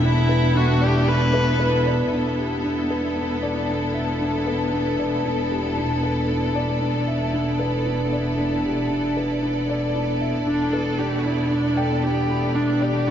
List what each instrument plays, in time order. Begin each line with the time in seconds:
Already playing: double bass section E1, string section B3 E4 A4 E5, felt piano D4 D5 G5 B5
0.03 felt piano D4, viola E4
0.29 felt piano B4
0.55 felt piano D4, viola F#4
0.81 viola G4, felt piano D5
1.08 felt piano D4, viola B4
1.34 felt piano B4
1.60 felt piano B4
1.86 felt piano D5
2.12 double bass section E1, felt piano D4
2.38 felt piano G4
2.64 felt piano D4
2.90 felt piano B4
3.02 string section D5
3.16 felt piano D4
3.42 felt piano D5
3.68 felt piano D4
3.94 felt piano E5
4.21 felt piano D4
4.47 felt piano B4
4.73 felt piano D4
4.99 felt piano D5
5.25 felt piano D4
5.51 felt piano G4
5.77 felt piano D4
6.03 felt piano B4
6.29 felt piano D4
6.55 felt piano D5
6.81 felt piano D4
7.07 felt piano E5
7.33 felt piano D4
7.59 felt piano B4
7.86 felt piano D4
8.12 felt piano D5
8.39 felt piano D4
8.65 felt piano G4
8.90 felt piano D4
9.17 felt piano B4
9.42 felt piano D4
9.69 felt piano D5
9.95 felt piano D4
10.21 felt piano E5
10.46 double bass section E1, string section B3, viola D4, felt piano D4
10.55 string section E4
10.73 viola A4, felt piano B4
10.98 felt piano D4, viola G4
11.18 viola F#4
11.24 viola E4, felt piano D5
11.50 viola D4, felt piano D4
11.77 viola A4, felt piano G5
12.03 felt piano D4, viola G4
12.30 felt piano B5
12.55 viola D4, felt piano D4
12.81 viola G4, felt piano D5
13.07 felt piano D4, viola F#4